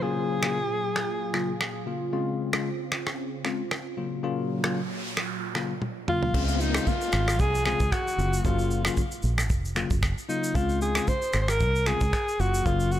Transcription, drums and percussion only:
0.43 finger snap medium
0.43 cross-stick loud
0.96 finger snap medium
0.96 cross-stick loud
1.34 finger snap medium
1.34 cross-stick medium
1.61 finger snap medium
1.61 cross-stick loud
2.53 finger snap medium
2.53 cross-stick loud
2.92 finger snap medium
2.92 cross-stick medium
3.07 finger snap medium
3.07 cross-stick medium
3.45 finger snap medium
3.45 cross-stick medium
3.71 finger snap medium
3.71 cross-stick loud
4.64 finger snap medium
4.64 cross-stick loud
5.17 finger snap medium
5.17 cross-stick loud
5.55 finger snap medium
5.55 cross-stick medium
5.82 high tom medium
6.08 mid tom medium
6.23 floor tom medium
6.34 kick loud
6.34 crash medium
6.48 shaker medium
6.60 shaker medium
6.74 finger snap medium
6.74 cross-stick loud
6.74 shaker loud
6.87 kick medium
6.87 shaker medium
7.01 shaker medium
7.12 finger snap medium
7.12 cross-stick medium
7.12 shaker medium
7.28 finger snap medium
7.28 cross-stick loud
7.28 shaker loud
7.39 kick loud
7.39 shaker medium
7.55 shaker medium
7.65 finger snap medium
7.65 cross-stick medium
7.65 shaker medium
7.80 kick loud
7.80 shaker medium
7.92 finger snap medium
7.92 kick medium
7.92 cross-stick loud
7.92 shaker medium
8.08 shaker medium
8.19 shaker medium
8.33 shaker medium
8.45 kick loud
8.45 shaker medium
8.59 shaker medium
8.71 shaker medium
8.85 finger snap medium
8.85 cross-stick loud
8.85 shaker loud
8.97 kick medium
8.97 shaker medium
9.11 shaker medium
9.22 shaker medium
9.38 finger snap medium
9.38 cross-stick loud
9.38 shaker loud
9.50 kick loud
9.50 shaker medium
9.65 shaker medium
9.76 finger snap medium
9.76 cross-stick medium
9.76 shaker soft
9.91 kick loud
9.91 shaker medium
10.03 finger snap medium
10.03 kick medium
10.03 cross-stick loud
10.03 shaker medium
10.18 shaker medium
10.29 shaker medium
10.44 shaker medium
10.55 kick loud
10.55 shaker medium
10.69 shaker medium
10.81 shaker medium
10.95 finger snap medium
10.95 cross-stick loud
10.95 shaker loud
11.07 kick medium
11.07 shaker medium
11.22 shaker medium
11.33 finger snap medium
11.33 cross-stick medium
11.33 shaker medium
11.48 finger snap medium
11.48 cross-stick loud
11.48 shaker medium
11.60 kick loud
11.60 shaker medium
11.75 shaker medium
11.86 finger snap medium
11.86 cross-stick medium
11.86 shaker medium
12.01 kick loud
12.01 shaker medium
12.13 finger snap medium
12.13 kick medium
12.13 cross-stick medium
12.13 shaker medium
12.28 shaker medium
12.40 shaker medium
12.54 shaker medium
12.66 kick loud
12.66 shaker medium
12.80 shaker medium
12.92 shaker medium

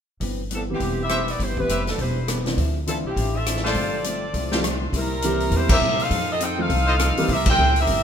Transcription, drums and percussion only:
0.21 kick soft
0.21 open hi-hat soft
0.51 closed hi-hat soft
0.80 kick soft
0.80 open hi-hat soft
1.09 cross-stick medium
1.09 closed hi-hat soft
1.28 open hi-hat soft
1.40 kick soft
1.40 open hi-hat soft
1.57 kick soft
1.69 closed hi-hat soft
1.87 snare soft
1.87 open hi-hat soft
1.99 kick soft
1.99 open hi-hat soft
2.28 cross-stick medium
2.28 closed hi-hat soft
2.46 snare soft
2.46 open hi-hat soft
2.58 kick soft
2.58 open hi-hat soft
2.87 closed hi-hat soft
3.17 kick soft
3.17 open hi-hat soft
3.46 cross-stick medium
3.46 closed hi-hat soft
3.56 snare soft
3.65 snare soft
3.74 kick soft
3.74 open hi-hat soft
4.04 closed hi-hat soft
4.34 kick soft
4.34 open hi-hat soft
4.52 snare soft
4.64 cross-stick medium
4.64 closed hi-hat medium
4.93 kick soft
4.93 open hi-hat soft
5.22 closed hi-hat soft
5.40 open hi-hat soft
5.52 kick soft
5.52 open hi-hat soft
5.69 kick medium
5.69 crash medium
6.00 open hi-hat soft
6.11 kick soft
6.11 open hi-hat soft
6.41 closed hi-hat medium
6.70 kick soft
6.70 open hi-hat soft
6.99 cross-stick medium
6.99 closed hi-hat medium
7.17 open hi-hat soft
7.29 kick soft
7.29 open hi-hat soft
7.46 kick medium
7.46 crash medium
7.76 open hi-hat soft
7.87 kick soft
7.87 open hi-hat soft

